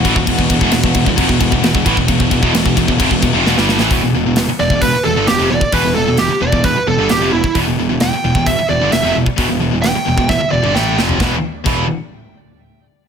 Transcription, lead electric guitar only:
4.60 4.81 D5 medium
4.81 5.03 B4 medium
5.04 5.26 A4 medium
5.27 5.49 G4 medium
5.50 5.72 D5 loud
5.73 5.95 B4 loud
5.95 6.17 A4 medium
6.19 6.40 G4 medium
6.42 6.63 D5 medium
6.64 6.86 B4 medium
6.88 7.10 A4 medium
7.10 7.32 G4 medium
7.33 7.54 E4 loud
8.02 8.46 G5 loud
8.47 8.69 E5 medium
8.69 8.91 D5 loud
8.93 9.14 E5 loud
9.82 10.27 G5 loud
10.29 10.51 E5 medium
10.51 10.74 D5 loud
10.75 10.97 G5 loud

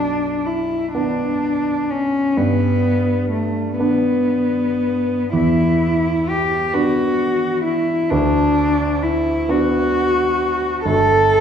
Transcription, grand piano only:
0.00 2.33 B1 soft
0.95 2.33 B3 soft
0.95 2.33 D4 soft
2.37 5.30 G2 soft
3.79 5.30 B3 soft
3.79 5.30 D4 soft
5.33 8.08 E2 soft
6.74 8.07 B3 soft
6.74 8.08 D4 soft
8.11 10.81 D2 soft
9.49 10.81 B3 soft
9.49 10.82 D4 soft
10.86 11.40 G1 soft

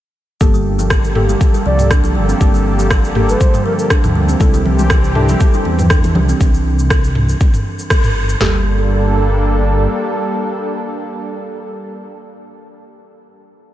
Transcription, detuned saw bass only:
0.41 1.35 G1 loud
1.66 2.17 C2 medium
2.16 2.33 G1 loud
2.41 3.35 G1 loud
4.04 4.35 D2 medium
4.41 5.35 C2 loud
5.66 6.17 E2 medium
6.15 6.33 C2 loud
6.41 7.35 C2 loud
8.04 8.35 G1 medium
8.41 9.87 G1 loud

